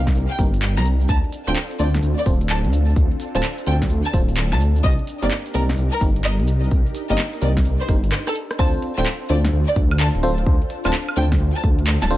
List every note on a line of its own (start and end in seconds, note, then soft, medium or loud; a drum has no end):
0.00 0.12 C2 loud
0.00 8.55 D4 medium
0.00 1.05 D#4 medium
0.00 1.05 G4 medium
0.00 1.05 A#4 medium
0.06 kick medium
0.06 snare medium
0.06 shaker soft
0.15 0.27 C2 medium
0.15 closed hi-hat medium
0.15 shaker medium
0.30 0.39 G5 medium
0.30 shaker soft
0.39 0.79 G1 medium
0.39 0.47 A#3 medium
0.39 0.47 C4 medium
0.39 0.47 D#4 medium
0.39 0.47 G4 medium
0.39 0.47 A#4 medium
0.39 kick loud
0.39 open hi-hat loud
0.39 shaker medium
0.54 closed hi-hat medium
0.54 shaker soft
0.62 clap loud
0.62 shaker medium
0.77 1.06 C2 medium
0.77 0.85 A#5 medium
0.77 snare medium
0.77 closed hi-hat soft
0.85 open hi-hat loud
0.85 shaker medium
1.00 shaker soft
1.09 1.21 D2 loud
1.09 4.80 C4 medium
1.09 4.80 F4 medium
1.09 4.80 A4 medium
1.09 1.17 A5 medium
1.09 kick loud
1.09 closed hi-hat medium
1.09 shaker soft
1.24 closed hi-hat soft
1.32 open hi-hat loud
1.32 shaker medium
1.47 1.54 D1 medium
1.47 1.57 C4 medium
1.47 1.57 D4 medium
1.47 1.57 F4 medium
1.47 1.57 A4 medium
1.47 1.57 C5 medium
1.47 1.56 G5 loud
1.47 snare soft
1.47 closed hi-hat medium
1.47 shaker soft
1.55 clap loud
1.55 shaker soft
1.71 closed hi-hat medium
1.71 shaker soft
1.79 1.99 D2 loud
1.79 1.87 C4 medium
1.79 1.87 D4 medium
1.79 1.87 F4 medium
1.79 1.87 A4 medium
1.79 1.87 C5 medium
1.79 1.87 D5 medium
1.79 open hi-hat loud
1.79 shaker medium
1.94 snare medium
1.94 shaker soft
2.03 2.15 D2 medium
2.03 closed hi-hat medium
2.03 shaker medium
2.18 2.26 D5 medium
2.18 shaker soft
2.26 2.66 D1 medium
2.26 2.34 C4 medium
2.26 2.34 D4 medium
2.26 2.34 F4 medium
2.26 2.34 A4 medium
2.26 2.34 C5 medium
2.26 kick loud
2.26 open hi-hat loud
2.26 shaker medium
2.41 closed hi-hat medium
2.41 shaker soft
2.49 2.58 A5 medium
2.49 clap loud
2.49 shaker medium
2.64 2.93 D2 medium
2.64 closed hi-hat medium
2.73 open hi-hat loud
2.73 shaker medium
2.88 shaker soft
2.96 3.08 D2 medium
2.96 kick loud
2.96 closed hi-hat medium
2.96 shaker soft
3.11 closed hi-hat soft
3.20 open hi-hat loud
3.20 shaker medium
3.35 3.41 D1 medium
3.35 3.44 C4 medium
3.35 3.44 D4 medium
3.35 3.44 F4 medium
3.35 3.44 A4 medium
3.35 3.44 C5 medium
3.35 3.43 A5 loud
3.35 snare soft
3.35 closed hi-hat medium
3.35 shaker soft
3.43 clap loud
3.43 shaker medium
3.58 closed hi-hat medium
3.58 shaker soft
3.67 3.87 D2 loud
3.67 3.75 C4 medium
3.67 3.75 D4 medium
3.67 3.75 F4 medium
3.67 3.75 A4 medium
3.67 3.75 C5 medium
3.67 3.75 G5 medium
3.67 open hi-hat loud
3.67 shaker medium
3.82 kick medium
3.82 snare medium
3.82 shaker soft
3.89 4.02 D2 medium
3.89 closed hi-hat medium
3.89 shaker soft
4.05 4.13 A5 medium
4.05 shaker soft
4.13 4.53 D1 medium
4.13 4.21 C4 medium
4.13 4.21 D4 medium
4.13 4.22 F4 medium
4.13 4.21 A4 medium
4.13 4.21 C5 medium
4.13 kick loud
4.13 open hi-hat loud
4.13 shaker medium
4.29 closed hi-hat medium
4.29 shaker soft
4.37 clap loud
4.37 shaker medium
4.52 4.81 D2 medium
4.52 4.60 A5 medium
4.52 snare soft
4.52 closed hi-hat medium
4.60 open hi-hat loud
4.60 shaker medium
4.76 shaker soft
4.83 4.96 C2 medium
4.83 8.55 D#4 medium
4.83 8.55 G4 medium
4.83 8.55 A#4 medium
4.83 4.92 D#5 loud
4.83 kick loud
4.83 closed hi-hat medium
4.83 shaker soft
4.99 closed hi-hat soft
5.07 open hi-hat loud
5.07 shaker medium
5.22 5.29 G1 loud
5.22 5.32 A#3 medium
5.22 5.32 C4 medium
5.22 5.32 D#4 medium
5.22 5.32 G4 medium
5.22 5.32 A#4 medium
5.22 5.30 D5 loud
5.22 snare soft
5.22 closed hi-hat medium
5.22 shaker soft
5.31 clap loud
5.31 shaker medium
5.46 closed hi-hat medium
5.46 shaker soft
5.54 5.74 C2 loud
5.54 5.62 A#3 medium
5.54 5.62 C4 medium
5.54 5.62 D#4 medium
5.54 5.62 G4 medium
5.54 5.62 A#4 medium
5.54 open hi-hat loud
5.54 shaker medium
5.69 snare medium
5.69 shaker soft
5.77 5.90 C2 medium
5.77 closed hi-hat medium
5.77 shaker soft
5.92 6.01 A#4 medium
5.92 shaker soft
6.01 6.41 G1 medium
6.01 6.09 A#3 medium
6.01 6.09 C4 medium
6.01 6.09 D#4 medium
6.01 6.09 G4 medium
6.01 6.09 A#4 medium
6.01 kick loud
6.01 open hi-hat loud
6.01 shaker medium
6.16 closed hi-hat medium
6.16 shaker soft
6.24 6.32 D#5 loud
6.24 clap loud
6.24 shaker soft
6.40 6.69 C2 medium
6.40 closed hi-hat medium
6.47 open hi-hat loud
6.47 shaker medium
6.63 shaker soft
6.71 6.83 C2 loud
6.71 kick loud
6.71 closed hi-hat medium
6.71 shaker medium
6.86 closed hi-hat soft
6.86 shaker soft
6.95 open hi-hat loud
6.95 shaker medium
7.10 7.17 G1 loud
7.10 7.19 A#3 medium
7.10 7.19 C4 medium
7.10 7.19 D#4 medium
7.10 7.19 G4 medium
7.10 7.19 A#4 medium
7.10 7.18 D#5 loud
7.10 snare soft
7.10 closed hi-hat medium
7.10 shaker soft
7.18 clap loud
7.18 shaker soft
7.33 closed hi-hat medium
7.33 shaker soft
7.42 7.62 C2 loud
7.42 7.50 A#3 medium
7.42 7.50 C4 medium
7.42 7.50 D#4 medium
7.42 7.50 G4 medium
7.42 7.50 A#4 medium
7.42 7.50 D5 medium
7.42 open hi-hat loud
7.42 shaker medium
7.56 kick medium
7.56 snare medium
7.56 closed hi-hat soft
7.56 shaker soft
7.65 7.77 C2 medium
7.65 closed hi-hat medium
7.65 shaker soft
7.81 7.89 C5 medium
7.81 shaker soft
7.88 8.12 G1 medium
7.88 7.97 A#3 medium
7.88 7.97 C4 medium
7.88 7.97 D#4 medium
7.88 7.97 G4 medium
7.88 7.97 A#4 medium
7.88 kick loud
7.88 cross-stick medium
7.88 open hi-hat loud
7.88 shaker medium
8.04 closed hi-hat medium
8.04 shaker soft
8.12 cross-stick medium
8.12 clap loud
8.12 shaker soft
8.27 8.35 A4 medium
8.27 cross-stick medium
8.27 closed hi-hat medium
8.27 shaker soft
8.35 open hi-hat loud
8.35 shaker loud
8.50 cross-stick medium
8.50 shaker soft
8.59 8.71 D2 medium
8.59 8.92 C4 loud
8.59 12.17 D4 medium
8.59 8.92 D4 medium
8.59 12.17 F4 medium
8.59 8.92 F4 medium
8.59 12.17 A4 medium
8.59 8.92 A4 medium
8.59 12.17 C5 medium
8.59 8.92 C5 loud
8.59 8.67 A5 loud
8.59 kick loud
8.74 closed hi-hat soft
8.82 open hi-hat loud
8.98 9.04 D1 loud
8.98 9.07 C4 medium
8.98 9.07 D4 medium
8.98 9.07 F4 medium
8.98 9.07 A4 medium
8.98 9.07 C5 loud
8.98 9.06 G5 loud
8.98 snare soft
8.98 closed hi-hat medium
9.06 clap loud
9.29 9.49 D2 loud
9.29 9.37 C4 medium
9.29 9.37 D4 medium
9.29 9.37 F4 medium
9.29 9.37 A4 medium
9.29 9.37 C5 medium
9.29 9.37 D5 medium
9.29 open hi-hat loud
9.45 snare medium
9.45 closed hi-hat medium
9.53 9.65 D2 medium
9.68 9.76 D5 medium
9.68 closed hi-hat medium
9.76 10.09 D2 medium
9.76 kick loud
9.76 open hi-hat loud
9.91 closed hi-hat medium
9.91 high woodblock medium
10.00 10.08 A5 loud
10.00 clap loud
10.15 10.44 D1 medium
10.15 closed hi-hat medium
10.23 10.31 C4 loud
10.23 10.31 D4 medium
10.23 10.31 F4 medium
10.23 10.31 A4 medium
10.23 10.31 C5 loud
10.23 open hi-hat loud
10.38 closed hi-hat medium
10.46 10.58 D2 loud
10.46 kick loud
10.62 closed hi-hat soft
10.70 open hi-hat loud
10.85 10.92 D1 loud
10.85 10.94 C4 medium
10.85 10.94 D4 medium
10.85 10.94 F4 medium
10.85 10.94 A4 medium
10.85 10.94 C5 medium
10.85 10.93 A5 loud
10.85 snare soft
10.85 closed hi-hat medium
10.85 high woodblock medium
10.93 clap loud
11.09 high woodblock medium
11.17 11.37 D2 loud
11.17 11.25 C4 medium
11.17 11.25 D4 medium
11.17 11.25 F4 medium
11.17 11.25 A4 medium
11.17 11.25 C5 medium
11.17 11.25 G5 loud
11.17 open hi-hat loud
11.32 kick medium
11.32 snare medium
11.32 closed hi-hat medium
11.40 11.52 D2 medium
11.55 11.63 A5 medium
11.55 closed hi-hat soft
11.64 11.97 D2 medium
11.64 kick loud
11.64 open hi-hat loud
11.79 closed hi-hat medium
11.87 clap loud
12.02 12.17 D1 medium
12.02 12.10 A5 medium
12.02 snare medium
12.02 closed hi-hat soft
12.10 12.17 C4 loud
12.10 12.17 D4 medium
12.10 12.17 F4 medium
12.10 12.17 A4 medium
12.10 12.17 C5 loud
12.10 open hi-hat loud